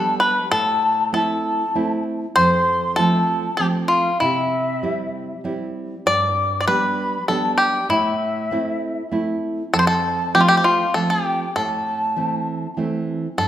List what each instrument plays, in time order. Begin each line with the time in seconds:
Already playing: nylon-string guitar G3 B3 D4, five-string banjo A4, quena A5
0.20 five-string banjo B4, quena B5
0.51 nylon-string guitar A2, five-string banjo A4, quena A5
1.12 nylon-string guitar A3 C4 E4, five-string banjo A4, quena A5
1.75 nylon-string guitar A3 C4 E4
2.36 nylon-string guitar F2, five-string banjo C5, quena C6
2.96 nylon-string guitar F3 A3 C4, five-string banjo A4, quena A5
3.57 nylon-string guitar F3 A3 C4, five-string banjo G4, quena G5
3.88 five-string banjo F4, quena F5
4.20 nylon-string guitar C3, five-string banjo E4, quena E5
4.83 nylon-string guitar G3 C4 E4
5.44 nylon-string guitar G3 C4 E4
6.06 nylon-string guitar G2, five-string banjo D5, quena D6
6.61 five-string banjo D5, quena D6
6.67 nylon-string guitar G3 B3 D4, five-string banjo B4, quena B5
7.27 nylon-string guitar G3 B3 D4, five-string banjo A4, quena A5
7.58 five-string banjo G4, quena G5
7.89 nylon-string guitar A2, five-string banjo E4, quena E5
8.51 nylon-string guitar A3 C4 E4
9.11 nylon-string guitar A3 C4 E4
9.74 nylon-string guitar F2, five-string banjo A4, quena A5
9.79 five-string banjo C5, quena C6
9.87 five-string banjo A4, quena A5
10.35 nylon-string guitar F3 A3 C4, five-string banjo G4, quena G5
10.41 five-string banjo F4, quena F5
10.48 five-string banjo G4, quena G5
10.57 five-string banjo G4, quena G5
10.64 five-string banjo F4, quena F5
10.94 nylon-string guitar F3 A3 C4, five-string banjo A4, quena A5
11.10 five-string banjo G4, quena G5
11.56 nylon-string guitar A2, five-string banjo A4, quena A5
12.16 nylon-string guitar E3 A3 C4
12.77 nylon-string guitar E3 A3 C4
13.38 nylon-string guitar G2, five-string banjo A4, quena A5